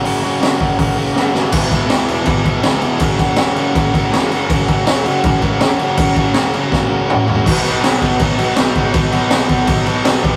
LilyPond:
<<
  \new Staff \with { instrumentName = "Distorted electric guitar" } { \time 4/4 \key b \major \tempo 4 = 162 <fis ais cis' fis'>8 <fis ais cis' fis'>8 <fis ais cis' fis'>8 <fis ais cis' fis'>8 <fis ais cis' fis'>8 <fis ais cis' fis'>8 <fis ais cis' fis'>8 <fis ais cis' fis'>8 | <e b e' gis'>8 <e b e' gis'>8 <e b e' gis'>8 <e b e' gis'>8 <e b e' gis'>8 <e b e' gis'>8 <e b e' gis'>8 <e b e' gis'>8 | <fis ais cis' fis'>8 <fis ais cis' fis'>8 <fis ais cis' fis'>8 <fis ais cis' fis'>8 <fis ais cis' fis'>8 <fis ais cis' fis'>8 <fis ais cis' fis'>8 <fis ais cis' fis'>8 | <fis ais cis' fis'>8 <fis ais cis' fis'>8 <fis ais cis' fis'>8 <fis ais cis' fis'>8 <fis ais cis' fis'>8 <fis ais cis' fis'>8 <fis ais cis' fis'>8 <fis ais cis' fis'>8 |
<fis ais cis' fis'>8 <fis ais cis' fis'>8 <fis ais cis' fis'>8 <fis ais cis' fis'>8 <fis ais cis' fis'>8 <fis ais cis' fis'>8 <fis ais cis' fis'>8 <fis ais cis' fis'>8 | <b, fis b dis'>8 <b, fis b dis'>8 <b, fis b dis'>8 <b, fis b dis'>8 <b, fis b dis'>8 <b, fis b dis'>8 <b, fis b dis'>8 <b, fis b dis'>8 | <b, fis b dis'>8 <b, fis b dis'>8 <b, fis b dis'>8 <b, fis b dis'>8 <b, fis b dis'>8 <b, fis b dis'>8 <b, fis b dis'>8 <b, g b d'>8 | }
  \new Staff \with { instrumentName = "Distorted electric guitar" } { \clef bass \time 4/4 \key b \major <fis, cis fis>8 <fis, cis fis>8 <fis, cis fis>8 <fis, cis fis>8 <fis, cis fis>8 <fis, cis fis>8 <fis, cis fis>8 <fis, cis fis>8 | <e, b, e>8 <e, b, e>8 <e, b, e>8 <e, b, e>8 <e, b, e>8 <e, b, e>8 <e, b, e>8 <e, b, e>8 | <fis, cis fis>8 <fis, cis fis>8 <fis, cis fis>8 <fis, cis fis>8 <fis, cis fis>8 <fis, cis fis>8 <fis, cis fis>8 <fis, cis fis>8 | <fis, cis fis>8 <fis, cis fis>8 <fis, cis fis>8 <fis, cis fis>8 <fis, cis fis>8 <fis, cis fis>8 <fis, cis fis>8 <fis, cis fis>8 |
<fis, cis fis>8 <fis, cis fis>8 <fis, cis fis>8 <fis, cis fis>8 <fis, cis fis>8 <fis, cis fis>8 <fis, cis fis>8 <fis, cis fis>8 | <b, fis b>8 <b, fis b>8 <b, fis b>8 <b, fis b>8 <b, fis b>8 <b, fis b>8 <b, fis b>8 <b, fis b>8 | <b, fis b>8 <b, fis b>8 <b, fis b>8 <b, fis b>8 <b, fis b>8 <b, fis b>8 <b, fis b>8 <g, d g>8 | }
  \new Staff \with { instrumentName = "Picked electric bass" } { \clef bass \time 4/4 \key b \major fis,,8 fis,,8 fis,,8 fis,,8 b,,4 fis,,8 fis,,8 | e,,8 e,,8 cis,8 e,,8 gis,,8 b,,8 cis,8 eis,,8 | fis,,8 fis,,8 e,,8 fis,,8 ais,,8 cis,8 e,8 fis,,8 | fis,,8 fis,,8 e,,8 fis,,8 ais,,8 cis,8 e,8 fis,,8 |
fis,,8 fis,,8 e,,8 fis,,8 ais,,8 cis,8 e,8 ais,,8 | b,,8 b,,8 b,,8 b,,8 b,,8 b,,8 b,,8 gis,8 | b,,8 b,,8 b,,8 b,,8 b,,8 b,,8 b,,8 b,,8 | }
  \new DrumStaff \with { instrumentName = "Drums" } \drummode { \time 4/4 hho4 <hho sn>8 bd8 <hho bd>4 sn8 sn8 | <cymc bd>8 <cymc bd>8 <cymc sn>8 cymc8 <cymc bd>8 <cymc bd>8 <cymc sn>8 cymc8 | <cymc bd>8 <cymc bd>8 <cymc sn>8 cymc8 <cymc bd>8 <cymc bd>8 <cymc sn>8 cymc8 | <cymc bd>8 <cymc bd>8 <cymc sn>8 cymc8 <cymc bd>8 <cymc bd>8 <cymc sn>8 cymc8 |
<cymc bd>8 <cymc bd>8 <cymc sn>8 cymc8 <bd sn>4 toml8 tomfh8 | <cymc bd>8 cymc8 <cymc sn>8 <cymc bd>8 <cymc bd>8 cymc8 <cymc sn>8 <cymc bd>8 | <cymc bd>8 cymc8 <cymc sn>8 <cymc bd>8 <cymc bd>8 cymc8 <cymc sn>8 <cymc bd>8 | }
>>